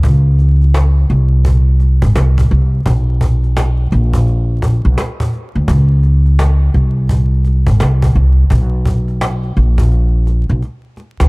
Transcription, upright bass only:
0.04 1.05 C#2 loud
1.10 1.98 C2 medium
2.02 2.13 G#1 medium
2.16 2.46 C2 loud
2.51 2.81 C2 medium
2.86 3.88 B1 loud
3.92 4.81 A#1 medium
4.85 4.96 B1 medium
5.55 5.66 D2 medium
5.68 6.70 C#2 loud
6.74 7.63 C2 medium
7.67 7.78 G#1 medium
7.80 8.10 C2 loud
8.15 8.45 C2 medium
8.51 9.52 B1 loud
9.57 10.45 A#1 medium
10.50 10.60 B1 medium
11.20 11.29 D2 medium

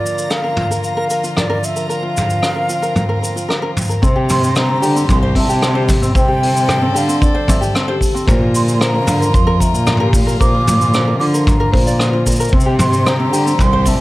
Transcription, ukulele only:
0.00 0.30 F4 medium
0.31 0.43 A#4 medium
0.44 0.56 A#4 medium
0.57 0.69 F4 medium
0.71 0.96 A#4 medium
0.97 1.09 A#4 medium
1.11 1.23 A#4 medium
1.24 1.36 F4 medium
1.37 1.48 A#4 medium
1.50 1.58 A#4 medium
1.76 1.88 A#4 medium
1.89 2.02 A#4 medium
2.03 2.42 F4 medium
2.42 2.54 A#4 medium
2.56 2.68 A#4 medium
2.69 2.82 F4 medium
2.82 3.08 A#4 medium
3.09 3.21 A#4 medium
3.22 3.35 A#4 medium
3.36 3.48 F4 medium
3.49 3.61 A#4 medium
3.62 3.70 A#4 medium
3.89 4.01 A#4 medium
4.02 4.15 C4 medium
4.16 4.54 G4 medium
4.55 4.68 C5 medium
4.69 4.81 C4 medium
4.82 4.94 G4 medium
4.96 5.21 C4 medium
5.23 5.35 C5 loud
5.36 5.48 C4 medium
5.49 5.61 G4 medium
5.62 5.74 C4 medium
5.75 5.83 C5 loud
6.02 6.14 C4 medium
6.15 6.27 C4 medium
6.28 6.67 G4 medium
6.68 6.80 C5 medium
6.82 6.94 C4 medium
6.95 7.07 G4 medium
7.08 7.33 C4 medium
7.35 7.47 C5 loud
7.48 7.60 C4 medium
7.61 7.73 G4 medium
7.75 7.87 C4 medium
7.88 7.96 C5 loud
8.14 8.26 C4 medium
8.28 8.40 A#4 medium
8.41 8.79 F4 medium
8.81 8.93 A#4 medium
8.94 9.06 A#4 medium
9.07 9.19 F4 medium
9.20 9.46 A#4 medium
9.47 9.59 A#4 loud
9.60 9.72 A#4 medium
9.74 9.86 F4 medium
9.87 9.99 A#4 medium
10.00 10.08 A#4 loud
10.27 10.39 A#4 medium
10.40 10.52 A#4 medium
10.54 10.92 F4 medium
10.94 11.06 A#4 medium
11.07 11.19 A#4 medium
11.20 11.32 F4 medium
11.34 11.59 A#4 medium
11.60 11.72 A#4 loud
11.73 11.85 A#4 medium
11.87 11.99 D5 medium
12.00 12.12 F4 medium
12.13 12.25 F4 medium
12.27 12.38 A#4 medium
12.40 12.51 A#4 loud
12.53 12.65 C4 medium
12.66 13.04 G4 medium
13.06 13.18 C5 medium
13.20 13.31 C4 medium
13.33 13.44 G4 medium
13.46 13.71 C4 medium
13.73 13.85 C5 loud
13.87 13.98 C4 medium

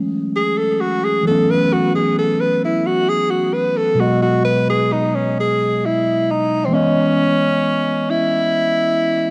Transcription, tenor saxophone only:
0.36 0.59 G#4 medium
0.58 0.82 A4 medium
0.81 1.06 F#4 loud
1.04 1.26 G#4 loud
1.27 1.52 A4 loud
1.51 1.74 B4 loud
1.73 1.95 F#4 medium
1.95 2.16 G#4 loud
2.18 2.42 A4 loud
2.40 2.62 B4 medium
2.64 2.88 E4 medium
2.86 3.11 F#4 loud
3.09 3.32 G#4 loud
3.30 3.55 F#4 medium
3.53 3.78 B4 medium
3.77 4.02 A4 loud
4.00 4.22 F#4 medium
4.22 4.43 F#4 medium
4.45 4.65 B4 loud
4.70 4.94 G#4 loud
4.92 5.16 D#4 medium
5.14 5.36 C#4 medium
5.40 5.87 G#4 medium
5.86 6.32 E4 medium
6.31 6.67 D#4 medium
6.65 6.75 C4 medium
6.74 8.12 C#4 loud
8.10 9.30 E4 loud

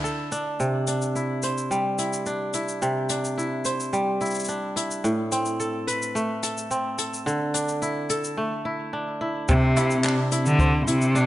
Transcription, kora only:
0.00 0.66 D3 medium
0.00 0.31 D4 medium
0.00 1.15 E4 medium
0.00 1.36 A4 medium
0.32 0.87 D4 medium
0.60 2.81 C3 medium
0.88 2.26 D4 soft
1.15 1.98 E4 soft
1.43 3.64 C5 medium
1.71 3.92 G3 medium
1.98 2.54 E4 soft
2.26 3.09 D4 soft
2.54 3.37 E4 soft
2.82 5.09 C3 medium
3.10 4.48 D4 medium
3.38 4.20 E4 medium
3.65 5.10 C5 medium
3.93 5.09 G3 medium
4.21 4.76 E4 medium
4.49 6.16 D4 medium
4.76 6.33 E4 medium
5.04 7.31 A2 medium
5.32 6.70 C4 medium
5.60 6.42 A4 medium
5.87 7.32 B4 medium
6.15 8.15 A3 medium
6.43 6.98 A4 medium
6.71 8.51 C4 medium
6.98 8.09 A4 medium
7.26 9.55 D3 medium
7.54 8.93 D4 medium
7.82 8.65 E4 medium
8.10 9.54 A4 medium
8.37 10.37 A3 medium
8.65 9.21 E4 medium
8.93 10.04 D4 medium
9.21 9.76 E4 medium
9.49 11.26 C3 medium
9.77 10.31 E4 medium
10.04 11.15 D4 medium
10.32 10.87 E4 medium
10.59 11.26 C5 medium
10.87 11.26 E4 medium
11.15 11.26 D4 medium

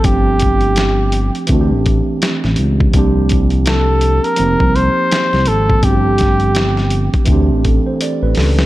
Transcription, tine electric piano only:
0.02 1.45 F3 medium
0.02 1.46 A3 medium
0.02 1.47 C4 medium
0.08 1.48 D4 medium
0.08 1.49 G4 medium
1.47 2.90 E3 medium
1.47 2.91 A3 medium
1.47 2.92 C4 medium
1.52 2.93 D4 medium
1.52 1.60 F#4 medium
1.61 2.97 G4 medium
2.91 4.34 F3 medium
2.91 4.35 A#3 medium
2.95 4.36 C4 medium
2.95 4.37 D4 medium
2.95 4.38 G4 medium
4.36 5.79 F3 medium
4.36 5.80 A#3 medium
4.40 5.81 C4 medium
4.40 5.82 D#4 medium
4.40 5.83 G4 medium
5.81 7.24 F3 medium
5.81 7.25 A3 medium
5.81 7.26 C4 medium
5.87 7.27 D4 medium
5.87 5.94 F#4 medium
5.95 7.31 G4 medium
7.25 8.66 E3 medium
7.25 8.66 A3 medium
7.29 8.66 C4 medium
7.29 8.66 D4 medium
7.29 7.66 G4 medium
7.65 7.85 A4 soft
7.87 8.00 C5 medium
8.02 8.21 D5 medium
8.23 8.36 B4 medium
8.38 8.57 A4 medium
8.59 8.66 G4 medium

